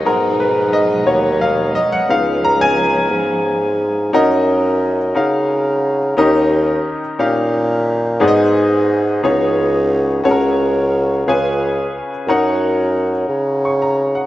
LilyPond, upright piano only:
<<
  \new Staff \with { instrumentName = "Upright piano" } { \time 6/8 \key fis \major \tempo 4. = 59 ais'8 b'8 dis''8 cis''8 eis''8 dis''16 fis''16 | eis''8 ais''16 gis''2~ gis''16 | <cis' dis' fis' ais' dis''>4 r8 <cis' dis' fis' ais' eis''>4 r8 | <cis' dis' g' ais' dis''>4 r8 <cis' dis' g' ais' eis''>4 r8 |
<b dis' fis' gis' d'' dis''>4 r8 <b dis' fis' gis' cis''>4 r8 | <fis' a' ais' cis''>4 r8 <eis' gis' b' cis'' gis''>4 r8 | <dis' fis' ais' cis'' fis''>4 r4 cis'''16 ais''8 fis''16 | }
  \new Staff \with { instrumentName = "Upright piano" } { \time 6/8 \key fis \major <gis b fis'>4. <ais b fis'>8 r4 | <b dis' eis'>2. | r2. | dis4. r4. |
gis,4. cis4. | cis4. cis4. | r2. | }
>>